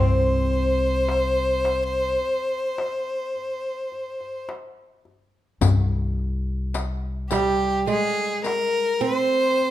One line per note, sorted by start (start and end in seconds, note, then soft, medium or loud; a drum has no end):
0.00 2.16 C2 medium
0.00 4.43 C4 medium
0.00 4.48 C5 medium
0.23 darbuka ka soft
1.08 darbuka tek medium
1.36 darbuka ka soft
1.65 darbuka tek medium
2.21 darbuka ka soft
2.78 darbuka tek medium
3.36 darbuka ka soft
3.92 darbuka ka soft
4.21 darbuka ka soft
4.49 darbuka tek medium
5.05 darbuka ka soft
5.61 7.84 C2 medium
5.61 riq medium
5.61 darbuka dum medium
5.90 darbuka ka soft
6.19 darbuka ka soft
6.74 riq soft
6.74 darbuka tek medium
7.30 7.87 G3 medium
7.30 7.84 G4 medium
7.30 riq soft
7.30 darbuka tek medium
7.87 9.05 G#3 medium
7.87 8.41 G#4 medium
7.87 riq soft
8.44 9.03 A#4 medium
8.44 riq soft
8.44 darbuka tek medium
9.01 9.71 C4 medium
9.01 9.71 C5 medium
9.01 riq soft
9.60 darbuka ka soft